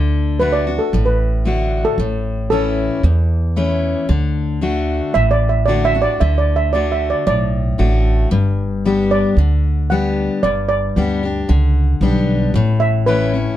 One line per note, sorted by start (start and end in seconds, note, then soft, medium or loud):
0.00 0.78 D2 medium
0.00 0.39 D3 medium
0.40 0.65 D3 soft
0.40 0.66 A3 medium
0.40 0.66 D4 medium
0.40 0.66 F#4 medium
0.40 0.52 B4 medium
0.53 0.78 D5 medium
0.67 0.93 D4 soft
0.67 0.92 F#4 medium
0.79 1.05 A4 medium
0.93 1.83 A1 medium
0.93 1.94 A2 medium
1.06 1.83 B4 medium
1.45 1.95 D3 medium
1.45 1.96 A3 medium
1.45 1.96 D4 medium
1.45 1.96 F#4 medium
1.85 2.49 A4 medium
1.98 2.88 A1 medium
1.98 2.99 A2 medium
2.50 3.01 E3 medium
2.50 3.02 A3 medium
2.50 3.02 C#4 medium
2.50 3.02 E4 medium
2.50 3.53 A4 medium
3.03 3.94 E2 medium
3.03 4.04 E2 medium
3.56 4.07 E3 medium
3.56 4.07 A3 medium
3.56 4.07 C#4 medium
3.56 4.07 E4 medium
4.09 5.00 D2 medium
4.09 4.60 D3 medium
4.61 5.12 D3 medium
4.61 5.12 A3 medium
4.61 5.13 D4 medium
4.61 5.13 F#4 medium
5.14 6.06 A1 medium
5.14 6.16 A2 medium
5.14 5.32 E5 loud
5.31 5.49 D5 medium
5.49 5.67 E5 medium
5.66 5.93 D3 medium
5.66 5.93 A3 medium
5.66 5.94 D4 medium
5.66 5.93 F#4 medium
5.66 5.84 D5 medium
5.85 6.02 E5 medium
5.95 6.20 D4 soft
5.95 6.20 F#4 medium
6.02 6.20 D5 medium
6.20 7.12 D2 medium
6.20 6.72 D3 medium
6.20 6.38 E5 medium
6.38 6.55 D5 medium
6.56 6.73 E5 medium
6.73 7.24 D3 medium
6.73 7.24 A3 medium
6.73 7.25 D4 medium
6.73 7.25 F#4 medium
6.73 6.90 D5 medium
6.92 7.09 E5 medium
7.10 7.26 D5 medium
7.27 7.72 B1 medium
7.27 8.27 A2 medium
7.27 8.81 D5 medium
7.78 8.24 A1 medium
7.78 8.29 D3 soft
7.78 8.29 A3 medium
7.78 8.29 D4 medium
7.78 8.29 F#4 medium
8.31 9.22 G1 medium
8.31 9.32 G2 medium
8.85 9.35 G3 medium
8.85 9.36 B3 medium
8.85 9.36 D4 medium
8.85 9.36 G4 medium
9.11 9.88 D5 medium
9.37 10.28 D2 medium
9.37 10.39 D3 medium
9.90 10.41 G3 medium
9.90 10.41 B3 soft
9.90 10.41 D4 medium
9.90 10.42 G4 medium
9.90 10.42 F#5 medium
10.43 10.88 G1 medium
10.43 11.44 G2 medium
10.43 10.67 D5 medium
10.69 12.24 D5 medium
10.96 11.41 D2 medium
10.96 11.22 G3 medium
10.96 11.22 B3 medium
10.96 11.22 D4 medium
10.96 11.22 G4 medium
11.23 11.49 D4 soft
11.23 11.48 G4 soft
11.49 11.94 C#2 medium
11.49 12.49 D3 medium
12.01 12.46 B1 medium
12.01 12.52 G3 soft
12.01 12.52 B3 medium
12.01 12.53 D4 medium
12.01 12.53 G4 medium
12.54 13.45 A1 medium
12.54 13.55 A2 medium
12.80 13.06 E5 medium
13.06 13.33 E3 medium
13.06 13.33 A3 medium
13.06 13.33 C#4 medium
13.06 13.32 E4 medium
13.06 13.57 B4 medium
13.34 13.57 C#4 soft
13.34 13.57 E4 soft